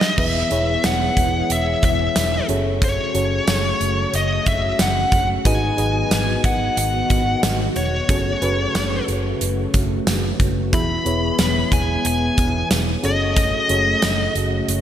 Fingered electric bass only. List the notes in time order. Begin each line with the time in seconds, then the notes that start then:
0.18 E1
0.51 E1
0.84 E1
1.17 E1
1.50 E1
1.83 E1
2.16 E1
2.49 F#1
3.15 F#1
3.47 F#1
3.80 F#1
4.13 F#1
4.46 F#1
4.79 F#1
5.12 F#1
5.45 G#1
5.78 G#1
6.11 G#1
6.44 G#1
6.77 G#1
7.10 G#1
7.43 G#1
7.76 E1
8.09 F#1
8.42 F#1
8.75 F#1
9.08 F#1
9.41 F#1
9.74 F#1
10.07 F#1
10.40 F#1
10.73 E1
11.06 E1
11.39 E1
11.72 E1
12.05 E1
12.38 E1
12.71 E1
13.04 F#1
13.70 F#1
14.03 F#1
14.35 F#1
14.68 F#1